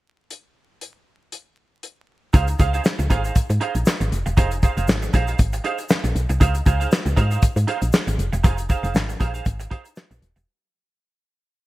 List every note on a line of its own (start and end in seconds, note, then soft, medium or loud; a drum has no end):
0.31 closed hi-hat medium
0.81 closed hi-hat medium
1.32 closed hi-hat medium
1.83 closed hi-hat medium
2.33 2.55 C#2 loud
2.33 2.52 D#4 medium
2.33 2.48 G#4 medium
2.33 2.47 C5 medium
2.33 2.47 F5 medium
2.33 kick loud
2.33 closed hi-hat medium
2.33 shaker medium
2.48 muted clean electric guitar stroke soft
2.48 closed hi-hat soft
2.48 shaker medium
2.59 2.80 C#2 medium
2.59 2.74 D#4 medium
2.59 2.73 G#4 medium
2.59 2.73 C5 medium
2.59 2.72 F5 medium
2.59 kick medium
2.59 closed hi-hat medium
2.59 shaker medium
2.73 2.83 D#4 soft
2.73 2.84 G#4 medium
2.73 2.84 C5 medium
2.73 2.84 F5 medium
2.73 closed hi-hat soft
2.73 shaker soft
2.84 muted clean electric guitar stroke soft
2.84 snare loud
2.84 clap medium
2.84 shaker medium
2.99 3.08 C#2 loud
2.99 muted clean electric guitar stroke soft
2.99 closed hi-hat soft
2.99 shaker medium
3.10 3.31 G#1 loud
3.10 3.25 D#4 medium
3.10 3.24 G#4 medium
3.10 3.23 C5 medium
3.10 3.23 F5 medium
3.10 kick medium
3.10 closed hi-hat medium
3.10 shaker soft
3.24 3.37 D#4 soft
3.24 3.37 G#4 soft
3.24 3.37 C5 medium
3.24 3.36 F5 medium
3.24 closed hi-hat soft
3.24 shaker soft
3.35 3.41 G#2 soft
3.35 kick loud
3.35 closed hi-hat medium
3.35 shaker medium
3.50 3.59 G#2 medium
3.50 muted clean electric guitar stroke soft
3.50 closed hi-hat medium
3.50 shaker medium
3.61 3.79 D#4 medium
3.61 3.75 G#4 loud
3.61 3.74 C5 loud
3.61 3.74 F5 medium
3.61 closed hi-hat medium
3.75 3.84 A#1 medium
3.75 muted clean electric guitar stroke soft
3.75 closed hi-hat medium
3.75 shaker medium
3.86 muted clean electric guitar stroke soft
3.86 snare medium
3.86 clap medium
3.86 shaker medium
4.00 4.10 G#1 medium
4.00 muted clean electric guitar stroke soft
4.00 closed hi-hat soft
4.00 shaker soft
4.12 4.24 F1 medium
4.12 closed hi-hat medium
4.12 shaker soft
4.26 4.35 E1 medium
4.26 muted clean electric guitar stroke soft
4.26 closed hi-hat soft
4.26 shaker soft
4.37 4.70 F1 loud
4.37 4.55 D#4 medium
4.37 4.52 G#4 medium
4.37 4.51 C5 medium
4.37 4.50 F5 medium
4.37 kick loud
4.37 closed hi-hat medium
4.37 shaker medium
4.51 muted clean electric guitar stroke soft
4.51 closed hi-hat medium
4.51 shaker soft
4.63 4.77 D#4 medium
4.63 4.77 G#4 medium
4.63 4.76 C5 medium
4.63 4.76 F5 medium
4.63 kick medium
4.63 closed hi-hat medium
4.63 shaker medium
4.77 4.86 F1 medium
4.77 4.87 D#4 soft
4.77 4.87 G#4 soft
4.77 4.88 C5 medium
4.77 4.88 F5 medium
4.77 closed hi-hat soft
4.77 shaker soft
4.88 5.09 G#1 medium
4.88 muted clean electric guitar stroke soft
4.88 snare loud
4.88 clap medium
4.88 shaker medium
5.02 muted clean electric guitar stroke soft
5.02 closed hi-hat soft
5.02 shaker medium
5.13 5.35 A#1 loud
5.13 5.28 D#4 medium
5.13 5.28 G#4 medium
5.13 5.27 C5 loud
5.13 5.27 F5 medium
5.13 kick medium
5.13 closed hi-hat medium
5.13 shaker soft
5.27 5.38 D#4 soft
5.27 5.38 G#4 medium
5.27 5.39 C5 medium
5.27 5.39 F5 medium
5.27 closed hi-hat soft
5.27 shaker soft
5.39 5.60 G#1 medium
5.39 muted clean electric guitar stroke soft
5.39 kick loud
5.39 closed hi-hat loud
5.39 shaker medium
5.53 muted clean electric guitar stroke soft
5.53 closed hi-hat medium
5.53 shaker soft
5.64 5.83 D#4 medium
5.64 5.78 G#4 medium
5.64 5.78 C5 medium
5.64 5.77 F5 medium
5.64 closed hi-hat medium
5.78 muted clean electric guitar stroke soft
5.78 closed hi-hat medium
5.78 shaker medium
5.89 muted clean electric guitar stroke soft
5.89 snare loud
5.89 clap medium
5.89 shaker medium
6.04 6.13 A#1 medium
6.04 muted clean electric guitar stroke soft
6.04 closed hi-hat soft
6.04 shaker soft
6.15 6.27 B1 medium
6.15 closed hi-hat medium
6.15 shaker soft
6.29 6.39 C2 medium
6.29 muted clean electric guitar stroke soft
6.29 closed hi-hat soft
6.29 shaker medium
6.40 6.62 C#2 loud
6.40 6.59 D#4 medium
6.40 6.55 G#4 medium
6.40 6.54 C5 medium
6.40 6.53 F5 medium
6.40 kick loud
6.40 closed hi-hat medium
6.40 shaker medium
6.55 muted clean electric guitar stroke soft
6.55 closed hi-hat soft
6.55 shaker soft
6.66 6.87 C#2 loud
6.66 6.80 D#4 medium
6.66 6.80 G#4 medium
6.66 6.79 C5 medium
6.66 6.79 F5 medium
6.66 kick medium
6.66 closed hi-hat medium
6.66 shaker medium
6.80 6.90 D#4 soft
6.80 6.91 G#4 soft
6.80 6.91 C5 medium
6.80 6.91 F5 medium
6.80 closed hi-hat soft
6.80 shaker soft
6.91 muted clean electric guitar stroke soft
6.91 snare loud
6.91 clap medium
6.91 shaker medium
7.05 7.15 C#2 loud
7.05 muted clean electric guitar stroke soft
7.05 closed hi-hat soft
7.05 shaker soft
7.17 7.38 G#2 loud
7.17 7.31 D#4 medium
7.17 7.31 G#4 medium
7.17 7.30 C5 medium
7.17 7.30 F5 medium
7.17 kick medium
7.17 closed hi-hat medium
7.17 shaker soft
7.31 7.44 D#4 soft
7.31 7.44 G#4 medium
7.31 7.43 C5 medium
7.31 7.43 F5 medium
7.31 closed hi-hat soft
7.31 shaker medium
7.42 7.48 G#2 soft
7.42 kick loud
7.42 closed hi-hat loud
7.42 shaker medium
7.56 7.66 G#2 loud
7.56 muted clean electric guitar stroke soft
7.56 closed hi-hat medium
7.56 shaker medium
7.67 7.86 D#4 medium
7.67 7.82 G#4 medium
7.67 7.81 C5 loud
7.67 7.81 F5 loud
7.67 closed hi-hat medium
7.82 7.91 A#1 medium
7.82 muted clean electric guitar stroke soft
7.82 closed hi-hat medium
7.82 shaker medium
7.92 muted clean electric guitar stroke soft
7.92 snare loud
7.92 clap medium
7.92 shaker medium
8.07 8.17 G#1 medium
8.07 muted clean electric guitar stroke soft
8.07 closed hi-hat soft
8.07 shaker soft
8.18 8.30 F1 medium
8.18 closed hi-hat medium
8.18 shaker medium
8.32 8.42 E1 medium
8.32 muted clean electric guitar stroke soft
8.32 closed hi-hat soft
8.32 shaker medium
8.43 8.77 F1 loud
8.43 8.62 D#4 medium
8.43 8.58 G#4 medium
8.43 8.57 C5 medium
8.43 8.57 F5 medium
8.43 kick loud
8.43 closed hi-hat medium
8.43 shaker medium
8.58 muted clean electric guitar stroke soft
8.58 closed hi-hat medium
8.58 shaker medium
8.69 8.84 D#4 medium
8.69 8.83 G#4 medium
8.69 8.83 C5 medium
8.69 8.82 F5 medium
8.69 kick medium
8.69 closed hi-hat medium
8.69 shaker medium
8.83 8.93 F1 loud
8.83 8.93 D#4 soft
8.83 8.94 G#4 medium
8.83 8.94 C5 medium
8.83 8.95 F5 medium
8.83 closed hi-hat soft
8.83 shaker soft
8.95 9.16 G#1 loud
8.95 muted clean electric guitar stroke soft
8.95 snare loud
8.95 clap medium
8.95 shaker medium
9.09 muted clean electric guitar stroke soft
9.09 closed hi-hat soft
9.09 shaker medium
9.20 9.41 A#1 medium
9.20 9.35 D#4 medium
9.20 9.34 G#4 medium
9.20 9.34 C5 medium
9.20 9.33 F5 medium
9.20 kick medium
9.20 closed hi-hat medium
9.20 shaker soft
9.34 9.44 D#4 soft
9.34 9.45 G#4 soft
9.34 9.45 C5 medium
9.34 9.45 F5 medium
9.34 closed hi-hat soft
9.34 shaker soft
9.45 9.67 G#1 medium
9.45 muted clean electric guitar stroke soft
9.45 kick loud
9.45 closed hi-hat loud
9.45 shaker medium
9.60 muted clean electric guitar stroke soft
9.60 closed hi-hat medium
9.60 shaker medium
9.71 9.89 D#4 medium
9.71 9.85 G#4 medium
9.71 9.85 C5 medium
9.71 9.84 F5 medium
9.71 kick medium
9.71 closed hi-hat medium
9.85 muted clean electric guitar stroke soft
9.85 closed hi-hat medium
9.85 shaker medium
9.96 muted clean electric guitar stroke soft
9.96 snare loud
9.96 clap medium
9.96 shaker medium
10.11 10.20 A#1 medium
10.11 muted clean electric guitar stroke soft
10.11 closed hi-hat soft
10.11 shaker medium
10.22 10.34 D#1 medium
10.22 closed hi-hat medium
10.22 shaker soft
10.36 10.46 E1 medium
10.36 muted clean electric guitar stroke soft
10.36 closed hi-hat soft
10.36 shaker medium